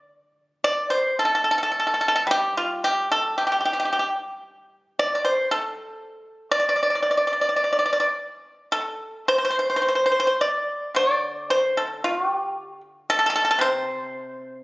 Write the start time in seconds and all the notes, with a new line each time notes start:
Already playing: D3
0.64 D5
0.90 C5
1.19 A4
1.25 A4
1.35 A4
1.44 A4
1.51 A4
1.58 A4
1.63 A4
1.72 A4
1.80 A4
1.87 A4
1.94 A4
2.01 A4
2.08 A4
2.16 A4
2.27 G3
2.31 G4
2.57 F4
2.84 G4
3.12 A4
3.38 G4
3.47 G4
3.52 G4
3.61 G4
3.65 G4
3.73 G4
3.80 G4
3.85 G4
3.93 G4
3.99 G4
4.99 D5
5.15 D5
5.25 C5
5.51 A4
6.52 D5
6.60 D5
6.69 D5
6.76 D5
6.83 D5
6.90 D5
6.95 D5
7.03 D5
7.11 D5
7.17 D5
7.27 D5
7.33 D5
7.41 D5
7.49 D5
7.56 D5
7.64 D5
7.73 D5
7.79 D5
7.86 D5
7.93 D5
8.00 D5
8.72 A4
9.28 C5
9.38 C5
9.45 C5
9.50 C5
9.59 C5
9.70 C5
9.76 C5
9.82 C5
9.88 C5
9.95 C5
10.06 C5
10.12 C5
10.20 C5
10.27 C5
10.41 D5
10.95 D3 D5
11.50 C5
11.77 A4
12.04 F4
12.27 G4
13.10 A4
13.19 A4
13.26 A4
13.36 A4
13.45 A4
13.51 A4
13.59 C3 C5